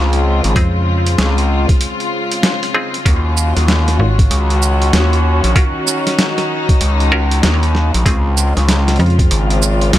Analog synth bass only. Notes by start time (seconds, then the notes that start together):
Already playing: C#2
0.44 G#1
1.18 C#2
3.06 D#2
3.57 D#2
4.31 C#2
4.93 D#2
5.44 A#1
6.81 C#2
7.44 D#2
7.94 A#1
8.06 C#2
8.57 C#2
9.31 G#1
9.93 C#2